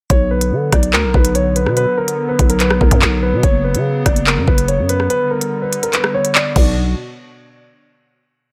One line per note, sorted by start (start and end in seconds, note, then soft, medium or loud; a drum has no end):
0.10 0.53 B1 loud
0.10 3.40 D3 medium
0.10 5.06 F#3 medium
0.10 6.52 B3 medium
0.10 0.28 C#5 loud
0.10 kick loud
0.10 closed hi-hat medium
0.31 0.70 B4 medium
0.41 closed hi-hat medium
0.52 0.71 D3 loud
0.72 0.95 B1 loud
0.72 0.91 D5 medium
0.72 kick loud
0.72 cross-stick loud
0.72 closed hi-hat medium
0.83 closed hi-hat medium
0.93 1.05 D2 loud
0.93 1.11 A#4 medium
0.93 clap loud
1.04 1.14 B1 loud
1.14 1.68 B1 loud
1.14 1.32 B4 medium
1.14 kick loud
1.25 closed hi-hat medium
1.35 1.53 C#5 medium
1.35 closed hi-hat medium
1.56 1.74 B4 medium
1.56 closed hi-hat medium
1.66 1.86 B2 loud
1.66 cross-stick medium
1.77 1.95 B4 medium
1.77 closed hi-hat medium
1.98 2.27 A#4 medium
2.08 closed hi-hat medium
2.29 2.47 B4 medium
2.39 2.79 B1 loud
2.39 kick loud
2.39 closed hi-hat medium
2.50 2.59 A#4 medium
2.50 closed hi-hat medium
2.60 2.78 B4 medium
2.60 clap medium
2.60 closed hi-hat medium
2.70 cross-stick loud
2.81 2.91 B1 loud
2.81 3.20 A#4 medium
2.81 kick medium
2.91 3.01 F#2 loud
2.91 kick loud
2.91 closed hi-hat medium
3.02 3.34 B1 loud
3.02 clap loud
3.23 3.41 B4 medium
3.33 3.43 B2 loud
3.43 3.76 F#1 loud
3.43 5.08 C#3 medium
3.43 3.61 C#5 loud
3.43 kick loud
3.43 closed hi-hat medium
3.64 4.03 B4 medium
3.75 4.04 C#3 loud
3.75 closed hi-hat medium
4.06 4.39 F#1 loud
4.06 4.24 D5 medium
4.06 kick loud
4.06 cross-stick loud
4.06 closed hi-hat medium
4.16 closed hi-hat medium
4.27 4.45 A#4 medium
4.27 clap loud
4.37 4.47 F#2 loud
4.48 4.80 F#1 loud
4.48 4.66 B4 medium
4.48 kick loud
4.58 closed hi-hat medium
4.68 4.86 C#5 medium
4.68 closed hi-hat medium
4.79 5.08 F#2 loud
4.89 5.07 B4 medium
4.89 closed hi-hat medium
5.00 cross-stick medium
5.10 6.54 D3 medium
5.10 6.54 G3 medium
5.10 5.28 B4 loud
5.10 closed hi-hat medium
5.31 5.60 A#4 medium
5.41 closed hi-hat medium
5.62 5.80 B4 medium
5.73 closed hi-hat medium
5.83 5.92 A#4 medium
5.83 closed hi-hat medium
5.93 6.11 B4 medium
5.93 clap medium
5.93 closed hi-hat medium
6.04 cross-stick loud
6.14 6.32 C#5 medium
6.25 closed hi-hat medium
6.35 6.53 D5 medium
6.35 clap loud
6.56 6.95 B1 loud
6.56 6.75 B2 medium
6.56 6.75 B3 medium
6.56 6.75 D4 medium
6.56 6.75 F#4 medium
6.56 6.75 D5 medium
6.56 kick loud
6.56 crash medium